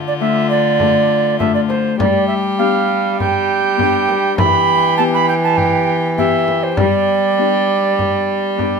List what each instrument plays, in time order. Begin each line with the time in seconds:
Already playing: cello D3, harp D3 A3 D4 F4, violin F4
0.08 recorder D5
0.20 harp A3 D4 F4, recorder E5
0.50 recorder D5
0.80 harp A3, frame drum
1.39 harp A3 D4 F4, recorder E5, frame drum
1.55 recorder D5
1.69 recorder C5, frame drum
1.99 harp G3, cello G3, violin G4, recorder D5, frame drum
2.28 recorder E5
2.59 harp B3 D4 G4, recorder F5
3.19 violin G4, recorder G5, frame drum
3.77 harp B3 D4, frame drum
3.83 harp G4
4.09 frame drum
4.38 cello E3, harp E3, violin G4, recorder B5, frame drum
4.97 harp B3 E4 G4, recorder A5
5.14 recorder B5
5.29 recorder G5
5.44 recorder A5
5.57 violin G4, recorder G5, frame drum
6.17 harp B3 E4 G4, violin G4, recorder E5, frame drum
6.48 frame drum
6.63 recorder C5
6.77 harp G3, cello G3, violin G4, recorder D5, frame drum
7.38 harp B3 D4 G4
7.99 frame drum
8.57 harp B3 D4 G4, frame drum